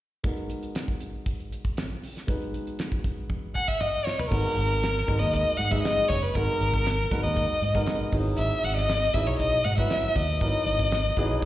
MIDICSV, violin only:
0, 0, Header, 1, 2, 480
1, 0, Start_track
1, 0, Key_signature, 5, "minor"
1, 0, Tempo, 508475
1, 229, Time_signature, 4, 2, 24, 8
1, 10811, End_track
2, 0, Start_track
2, 0, Title_t, "Violin"
2, 0, Program_c, 0, 40
2, 3351, Note_on_c, 0, 78, 70
2, 3474, Note_on_c, 0, 76, 74
2, 3488, Note_off_c, 0, 78, 0
2, 3590, Note_on_c, 0, 75, 79
2, 3604, Note_off_c, 0, 76, 0
2, 3831, Note_on_c, 0, 73, 70
2, 3845, Note_off_c, 0, 75, 0
2, 3958, Note_on_c, 0, 71, 66
2, 3972, Note_off_c, 0, 73, 0
2, 4054, Note_off_c, 0, 71, 0
2, 4059, Note_on_c, 0, 70, 91
2, 4902, Note_on_c, 0, 75, 77
2, 4916, Note_off_c, 0, 70, 0
2, 5261, Note_on_c, 0, 78, 79
2, 5276, Note_off_c, 0, 75, 0
2, 5390, Note_on_c, 0, 76, 68
2, 5404, Note_off_c, 0, 78, 0
2, 5496, Note_off_c, 0, 76, 0
2, 5502, Note_on_c, 0, 75, 85
2, 5743, Note_on_c, 0, 73, 73
2, 5757, Note_off_c, 0, 75, 0
2, 5875, Note_on_c, 0, 71, 72
2, 5890, Note_off_c, 0, 73, 0
2, 5992, Note_on_c, 0, 70, 87
2, 6006, Note_off_c, 0, 71, 0
2, 6818, Note_off_c, 0, 70, 0
2, 6824, Note_on_c, 0, 75, 75
2, 7630, Note_off_c, 0, 75, 0
2, 7912, Note_on_c, 0, 76, 91
2, 8161, Note_on_c, 0, 78, 86
2, 8175, Note_off_c, 0, 76, 0
2, 8271, Note_off_c, 0, 78, 0
2, 8277, Note_on_c, 0, 75, 88
2, 8627, Note_on_c, 0, 76, 83
2, 8641, Note_off_c, 0, 75, 0
2, 8748, Note_on_c, 0, 73, 65
2, 8762, Note_off_c, 0, 76, 0
2, 8859, Note_off_c, 0, 73, 0
2, 8864, Note_on_c, 0, 75, 87
2, 9107, Note_on_c, 0, 78, 80
2, 9121, Note_off_c, 0, 75, 0
2, 9228, Note_off_c, 0, 78, 0
2, 9234, Note_on_c, 0, 76, 86
2, 9594, Note_on_c, 0, 75, 86
2, 9608, Note_off_c, 0, 76, 0
2, 10811, Note_off_c, 0, 75, 0
2, 10811, End_track
0, 0, End_of_file